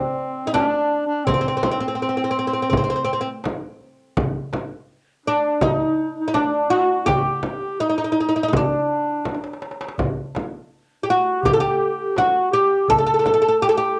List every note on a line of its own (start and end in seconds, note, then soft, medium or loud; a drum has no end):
0.00 0.43 C4 medium
0.00 0.52 C4 medium
0.47 0.53 D#4 medium
0.53 1.04 D4 medium
0.53 1.26 D4 medium
0.53 darbuka tek medium
0.53 frame drum medium
0.92 darbuka ka soft
1.07 1.26 D4 medium
1.25 3.44 C4 medium
1.25 1.33 C4 medium
1.25 darbuka dum medium
1.25 frame drum medium
1.34 1.40 C4 medium
1.41 1.47 C4 medium
1.48 1.55 C4 medium
1.57 1.62 C4 medium
1.63 1.70 C4 medium
1.63 darbuka tek medium
1.63 frame drum medium
1.71 1.78 C4 medium
1.80 1.87 C4 medium
1.88 1.94 C4 soft
1.95 2.01 C4 soft
2.02 2.08 C4 medium
2.09 2.16 C4 soft
2.17 2.23 C4 soft
2.24 2.29 C4 soft
2.31 2.38 C4 medium
2.36 2.45 C4 soft
2.36 darbuka ka soft
2.47 2.52 C4 medium
2.53 2.60 C4 medium
2.62 2.68 C4 medium
2.70 2.76 C4 medium
2.70 darbuka dum medium
2.70 frame drum medium
2.77 2.83 C4 medium
2.84 2.89 C4 soft
2.90 2.95 C4 medium
2.90 darbuka ka soft
2.96 3.03 C4 soft
3.05 3.12 C4 medium
3.13 3.20 C4 medium
3.21 3.27 C4 medium
3.44 darbuka tek medium
3.44 frame drum medium
3.81 darbuka ka soft
4.17 darbuka dum medium
4.17 frame drum medium
4.53 darbuka tek medium
4.53 frame drum medium
4.72 darbuka ka soft
5.26 5.60 D4 medium
5.26 5.62 D4 medium
5.26 darbuka ka soft
5.61 6.27 D#4 medium
5.61 6.14 D#4 medium
5.61 frame drum medium
5.61 darbuka dum medium
5.81 darbuka ka soft
6.18 6.36 D#4 medium
6.28 6.34 D#4 medium
6.34 6.70 D4 medium
6.34 6.72 D4 medium
6.34 darbuka tek medium
6.34 frame drum medium
6.70 7.06 F#4 medium
6.70 7.10 F#4 medium
7.06 7.80 G4 loud
7.06 7.18 G4 medium
7.06 frame drum medium
7.06 darbuka dum medium
7.16 7.25 F#4 medium
7.24 7.82 G4 medium
7.43 darbuka tek medium
7.43 frame drum medium
7.62 darbuka ka soft
7.80 7.87 D#4 medium
7.80 8.53 D#4 medium
7.90 7.96 D#4 medium
7.98 8.03 D#4 medium
8.04 8.11 D#4 soft
8.12 8.18 D#4 medium
8.17 8.26 D#4 medium
8.17 darbuka ka soft
8.29 8.34 D#4 medium
8.36 8.41 D#4 medium
8.43 8.47 D#4 medium
8.48 8.54 D#4 medium
8.53 8.62 D4 medium
8.53 darbuka dum medium
8.53 frame drum medium
8.57 9.60 D4 medium
8.61 8.69 C4 medium
8.67 9.62 D4 medium
8.72 darbuka ka soft
8.90 darbuka ka soft
9.25 darbuka tek medium
9.25 frame drum medium
9.35 darbuka ka medium
9.44 darbuka tek medium
9.53 darbuka ka medium
9.62 darbuka tek medium
9.71 darbuka ka medium
9.81 darbuka tek medium
9.89 darbuka ka loud
9.98 darbuka dum medium
9.98 frame drum medium
10.35 darbuka tek medium
10.35 frame drum medium
10.53 darbuka ka soft
11.03 11.09 G4 medium
11.08 11.43 F#4 medium
11.08 11.45 F#4 medium
11.08 darbuka ka soft
11.42 11.56 G4 medium
11.42 darbuka dum medium
11.42 frame drum medium
11.46 11.52 G4 medium
11.53 11.59 A4 medium
11.59 12.18 G4 medium
11.59 darbuka ka soft
12.16 12.51 F#4 medium
12.16 12.53 F#4 medium
12.16 darbuka tek medium
12.16 frame drum medium
12.51 12.90 G4 medium
12.51 12.89 G4 medium
12.88 13.61 A4 medium
12.88 12.97 A4 loud
12.88 darbuka dum medium
12.88 frame drum medium
12.99 13.05 A4 medium
13.07 13.13 A4 medium
13.14 13.18 A4 medium
13.19 13.25 A4 medium
13.24 13.32 A4 medium
13.24 darbuka tek medium
13.24 frame drum medium
13.34 13.41 A4 medium
13.42 13.47 A4 medium
13.49 13.56 A4 medium
13.62 13.74 G4 medium
13.62 13.68 G4 medium
13.69 13.76 A4 medium
13.74 14.00 G4 medium